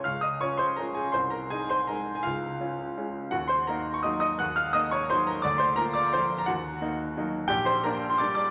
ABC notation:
X:1
M:3/4
L:1/16
Q:1/4=169
K:Ebdor
V:1 name="Grand piano"
[ff']2 [ee']2 [dd']2 [cc']2 [Bb]2 [Aa]2 | [cc']2 [Bb]2 [Aa]2 [cc']2 [Bb]3 a | [Ff]12 | [Gg]2 [cc']2 [Bb]3 d' [ee']2 [ee']2 |
[gg']2 [ff']2 [ee']2 [dd']2 [cc']2 [Bb]2 | [=d=d']2 [cc']2 [Bb]2 [dd']2 [cc']3 b | [Gg]12 | [K:Gdor] [Gg]2 [cc']2 [Bb]3 c' [dd']2 [dd']2 |]
V:2 name="Grand piano"
D,,4 [DF]4 [A,DF]4 | C,,4 E4 [A,E]4 | D,,4 [DF]4 [A,DF]4 | E,,4 [B,E]4 [G,B,E]4 |
E,,4 [B,E]4 [G,B,E]4 | =D,,4 [B,F]4 [F,B,F]4 | E,,4 [B,E]4 [G,B,E]4 | [K:Gdor] B,,,4 [B,D]4 [G,B,D]4 |]